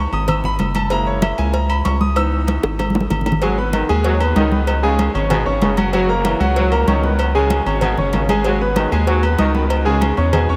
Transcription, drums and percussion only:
0.12 high conga, low agogo
0.28 cowbell, high conga, low conga, low agogo
0.44 high conga, low conga
0.59 cowbell, high conga, low agogo
0.75 cowbell, high conga, low agogo
0.90 cowbell, high conga, low agogo
1.06 high conga
1.22 cowbell, high conga, low agogo
1.38 high conga, low agogo
1.54 cowbell, high conga
1.70 high conga, low agogo
1.85 cowbell, high conga, low timbale, low agogo
2.01 high conga
2.16 cowbell, high conga, low agogo
2.32 high conga
2.47 cowbell, high conga, low agogo
2.63 high bongo, high conga, low agogo
2.79 cowbell, high bongo, high conga, low agogo
2.90 high conga
2.95 low bongo
3.00 high conga
3.10 cowbell, low bongo, low conga, low agogo
3.21 low conga
3.26 cowbell, low bongo, low agogo
3.32 low conga
3.42 cowbell, high conga, low agogo
3.58 high conga
3.73 cowbell, high conga, low agogo
3.89 high conga, low agogo
4.04 cowbell, high conga
4.20 high conga, low agogo
4.36 cowbell, high conga, low timbale, low agogo
4.52 high conga
4.67 cowbell, high conga, low agogo
4.84 high conga
4.99 cowbell, high conga, low agogo
5.15 high conga, low agogo
5.30 cowbell, high conga, low conga, low agogo
5.47 high conga
5.62 cowbell, high conga, low timbale, low agogo
5.77 cowbell, high conga, low agogo
5.93 cowbell, low agogo
6.09 high conga
6.25 cowbell, high conga, low agogo
6.40 high conga, low agogo
6.56 cowbell, high conga
6.72 high conga, low agogo
6.88 cowbell, high conga, low agogo
7.03 high conga
7.19 cowbell, high conga, low agogo
7.35 high conga
7.50 cowbell, high conga, low agogo
7.66 high conga, low agogo
7.81 cowbell, high conga, low conga, low agogo
7.98 high conga, low conga
8.13 cowbell, high conga, low timbale, low agogo
8.29 cowbell, high conga, low agogo
8.44 cowbell, low agogo
8.60 high conga
8.76 cowbell, high conga, low agogo
8.92 high conga, low agogo
9.07 cowbell, high conga
9.23 high conga, low agogo
9.38 cowbell, high conga, low agogo
9.55 high conga
9.70 cowbell, high conga, low agogo
9.86 high conga
10.01 cowbell, high conga, low agogo
10.17 high conga, low agogo
10.33 cowbell, high conga, low conga, low agogo
10.49 high conga

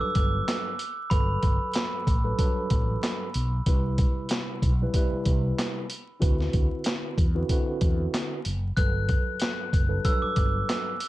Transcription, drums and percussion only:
0.15 kick, closed hi-hat
0.48 snare, clap, closed hi-hat
0.79 closed hi-hat
1.11 kick, closed hi-hat
1.43 kick, closed hi-hat
1.74 snare, clap, closed hi-hat
2.07 kick, closed hi-hat
2.39 kick, closed hi-hat
2.70 kick, closed hi-hat
3.03 snare, clap, closed hi-hat
3.34 closed hi-hat
3.66 kick, closed hi-hat
3.98 kick, closed hi-hat
4.29 snare, clap, closed hi-hat
4.62 kick, closed hi-hat
4.94 kick, closed hi-hat
5.26 kick, closed hi-hat
5.59 snare, clap, closed hi-hat
5.90 closed hi-hat
6.22 kick, closed hi-hat
6.40 snare
6.53 kick, closed hi-hat
6.84 snare, clap, closed hi-hat
7.18 kick, closed hi-hat
7.49 kick, closed hi-hat
7.81 kick, closed hi-hat
8.14 snare, clap, closed hi-hat
8.45 closed hi-hat
8.77 kick, closed hi-hat
9.09 kick, closed hi-hat
9.40 snare, clap, closed hi-hat
9.73 kick, closed hi-hat
10.05 kick, closed hi-hat
10.36 kick, closed hi-hat
10.69 snare, clap, closed hi-hat
11.00 closed hi-hat

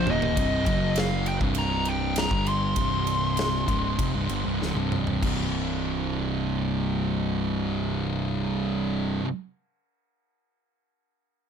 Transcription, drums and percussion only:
0.07 mid tom
0.22 floor tom
0.37 kick, ride
0.66 kick, ride
0.96 snare, ride
1.26 ride
1.41 kick
1.55 ride
1.85 ride
2.16 snare, ride
2.31 kick
2.47 ride
2.76 kick, ride
3.07 ride
3.37 snare, ride
3.68 kick, ride
3.99 kick, ride
4.29 ride
4.62 snare
4.92 mid tom
5.07 floor tom
5.23 kick, crash

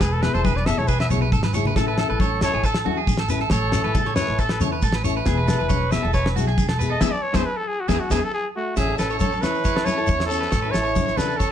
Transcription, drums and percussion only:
0.00 kick, snare, muted conga, low agogo, shekere
0.22 snare, low agogo
0.35 shekere
0.45 kick, high conga, low conga, shekere
0.57 snare
0.66 snare, low agogo, shekere
0.88 kick, muted conga, shekere
1.00 snare, low agogo
1.10 high conga, low conga, shekere
1.22 high conga
1.32 kick, high conga, shekere
1.43 snare, high conga, low agogo
1.54 low conga, shekere
1.65 low conga, shekere
1.76 kick, snare, muted conga, low agogo, shekere
1.98 snare, low agogo
2.20 kick, high conga, shekere
2.41 snare, low agogo, shekere
2.64 kick, muted conga, shekere
2.74 snare, low agogo
2.86 muted conga, high conga
3.07 kick, high conga, shekere
3.17 snare, low agogo
3.29 muted conga, shekere
3.40 snare
3.50 kick, snare, muted conga, low agogo, shekere
3.72 snare, low agogo, shekere
3.95 kick, high conga, low conga, shekere
4.05 snare
4.16 snare, low agogo, shekere
4.39 kick, muted conga, shekere
4.49 snare, low agogo
4.60 muted conga, high conga, low conga, shekere
4.82 kick, high conga, shekere
4.92 snare, low agogo
5.05 muted conga, shekere
5.26 kick, snare, muted conga, low agogo, shekere
5.48 snare, low agogo, shekere
5.70 kick, high conga, shekere
5.91 snare, low agogo, shekere
6.14 kick, snare, muted conga, shekere
6.25 snare, low agogo
6.36 muted conga, high conga, shekere
6.48 snare
6.58 kick, high conga, shekere
6.69 snare, low agogo
6.80 muted conga, shekere
7.01 kick, snare, high conga, low agogo, shekere
7.34 kick, snare, high conga, low agogo, shekere
7.88 kick, snare, high conga, low agogo, shekere
8.10 kick, snare, high conga, low agogo, shekere
8.76 kick, snare, crash, muted conga, low agogo, shekere
8.99 snare, muted conga, low agogo, shekere
9.10 shekere
9.20 kick, high conga, shekere
9.32 shekere
9.43 snare, low agogo, shekere
9.55 shekere
9.64 kick, snare, muted conga, shekere
9.76 snare, low agogo
9.86 high conga, shekere
9.98 shekere
10.07 kick, high conga, shekere
10.20 snare, low agogo, shekere
10.31 shekere
10.42 snare
10.52 kick, snare, muted conga, low agogo, shekere
10.74 snare, muted conga, low agogo, shekere
10.85 shekere
10.96 kick, high conga, low conga, shekere
11.07 snare, shekere
11.17 snare, muted conga, high conga, low conga, low agogo, shekere
11.30 shekere
11.40 kick, snare, muted conga, shekere

